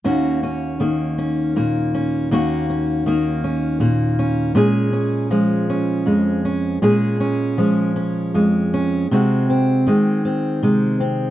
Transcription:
\new Staff \with { instrumentName = "Steel-string acoustic guitar" } { \time 3/4 \key ees \dorian \tempo 4 = 80 << { <bes des' ges'>8 des'8 bes8 des'8 bes8 des'8 | <bes des' ges'>8 des'8 bes8 des'8 bes8 des'8 | <aes des' aes'>8 des'8 aes8 des'8 aes8 des'8 | <aes des' aes'>8 des'8 aes8 des'8 aes8 des'8 |
<aes c' ges'>8 c'8 aes8 c'8 aes8 c'8 | } \\ { ees,4 ees4 bes,4 | ees,4 ees4 bes,4 | bes,4 f4 f,4 | bes,4 f4 f,4 |
c4 ees4 c4 | } >> }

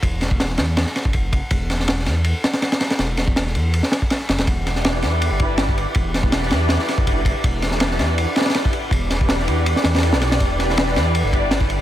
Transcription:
<<
  \new Staff \with { instrumentName = "String machine" } { \time 4/4 \key e \minor \tempo 4 = 162 r1 | r1 | r1 | <d' e' g' b' d''>2~ <d' e' g' b' d''>8 <d' e' g' b' d''>8 r4 |
<d' e' g' b' d''>2. <d' e' g' b' d''>16 r8. | <d' e' g' b' d''>2~ <d' e' g' b' d''>8 <d' e' g' b' d''>8 r4 | <d' e' g' b' d''>2~ <d' e' g' b' d''>8. <d' e' g' b' d''>8. <d' e' g' b' d''>8 | <d' e' g' b' d''>2~ <d' e' g' b' d''>8 <d' e' g' b' d''>8 r4 | }
  \new Staff \with { instrumentName = "Detuned saw bass" } { \clef bass \time 4/4 \key e \minor e,,4. e,8. r8 fis,,4 r16 | e,,4. e,8. r4. r16 | e,,4. e,8. r4 r16 fis,,16 e,,16 | e,,4. e,8. g,,4. r16 |
e,,4. e,8. r8 fis,,4 r16 | e,,4. e,8. r4. r16 | e,,4. e,8. r16 e,8. b,,8. | e,,4. e,8. g,,4. r16 | }
  \new DrumStaff \with { instrumentName = "Drums" } \drummode { \time 4/4 <bd cymr>8 <cymr sn>16 bd16 <cymr sn>16 sn16 <cymr sn>8 <cymr sn>16 sn16 <cymr sn>16 bd16 <bd cymr>8 <bd cymr>8 | <bd cymr>8 <cymr sn>16 sn16 <cymr sn>16 sn16 <cymr sn>8 cymr8 <cymr sn>16 <cymr sn>16 <cymr sn>16 <cymr sn>16 <cymr sn>16 <cymr sn>16 | <cymr sn>8 <cymr sn>16 bd16 <cymr sn>16 sn16 cymr8 cymr16 sn16 <cymr sn>16 bd16 <cymr sn>16 sn16 <cymr sn>16 <cymr sn>16 | <bd cymr>8 <cymr sn>16 sn16 <cymr sn>16 sn16 <cymr sn>8 cymr8 <bd cymr>8 <cymr sn>16 bd16 cymr8 |
<bd cymr>8 <cymr sn>16 bd16 <cymr sn>16 sn16 <cymr sn>8 <cymr sn>16 sn16 <cymr sn>16 bd16 <bd cymr>8 <bd cymr>8 | <bd cymr>8 <cymr sn>16 sn16 <cymr sn>16 sn16 <cymr sn>8 cymr8 <cymr sn>32 <cymr sn>32 <cymr sn>32 <cymr sn>32 <cymr sn>16 bd16 cymr8 | <bd cymr>8 <cymr sn>16 bd16 <cymr sn>16 sn16 cymr8 cymr16 sn16 <cymr sn>16 <cymr sn>32 <cymr sn>32 cymr16 sn16 <cymr sn>16 <cymr sn>16 | <bd cymr>8 <cymr sn>16 sn16 <cymr sn>16 sn16 <cymr sn>8 cymr8 <bd cymr>8 <cymr sn>16 bd16 cymr8 | }
>>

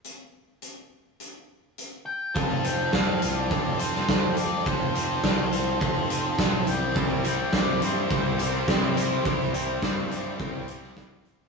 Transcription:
<<
  \new Staff \with { instrumentName = "Lead electric guitar" } { \time 4/4 \key f \lydian \tempo 4 = 104 r2. r8 g''8 | a''8 g''8 f''8. d''8. c''4 d''8 | c''2.~ c''8 g''8 | a''8 g''8 d''8 c''2~ c''8~ |
c''2. r4 | }
  \new Staff \with { instrumentName = "Distorted electric guitar" } { \time 4/4 \key f \lydian r1 | <f c' f' a'>8 <f c' f' a'>8 <f c' f' a'>8 <f c' f' a'>8 <f c' f' a'>8 <f c' f' a'>8 <f c' f' a'>8 <f c' f' a'>8 | <f c' f' a'>8 <f c' f' a'>8 <f c' f' a'>8 <f c' f' a'>8 <f c' f' a'>8 <f c' f' a'>8 <f c' f' a'>8 <g c' e' g'>8 | <g c' e' g'>8 <g c' e' g'>8 <g c' e' g'>8 <g c' e' g'>8 <g c' e' g'>8 <g c' e' g'>8 <g c' e' g'>8 <g c' e' g'>8 |
<g c' e' g'>8 <g c' e' g'>8 <g c' e' g'>8 <g c' e' g'>8 <g c' e' g'>8 <g c' e' g'>8 <g c' e' g'>8 <g c' e' g'>8 | }
  \new Staff \with { instrumentName = "Distorted electric guitar" } { \time 4/4 \key f \lydian r1 | r1 | r1 | <g c' e'>8 <g c' e'>8 <g c' e'>8 <g c' e'>8 <g c' e'>8 <g c' e'>8 <g c' e'>8 <g c' e'>8 |
<g c' e'>8 <g c' e'>8 <g c' e'>8 <g c' e'>8 <g c' e'>8 <g c' e'>8 <g c' e'>8 <g c' e'>8 | }
  \new Staff \with { instrumentName = "Picked electric bass" } { \clef bass \time 4/4 \key f \lydian r1 | f,,4 f,,8 c,8 f,,4 f,4 | f,,4 c,4 f,,4 b,,8 c,8~ | c,4 c,8 g,8 c,4 c4 |
c,4 g,4 c,4 c,4 | }
  \new DrumStaff \with { instrumentName = "Drums" } \drummode { \time 4/4 hh4 hh4 hh4 hh4 | bd8 hh8 <bd sn>8 hh8 bd8 hh16 sn16 <bd sn>8 hh8 | bd8 hh8 <bd sn>8 hh8 bd8 hh8 <bd sn>8 hh8 | bd8 hh8 <bd sn>8 hh8 bd8 hh8 <bd sn>8 hh8 |
bd8 hh8 <bd sn>8 hh8 bd8 hh16 sn16 <bd sn>8 hh8 | }
>>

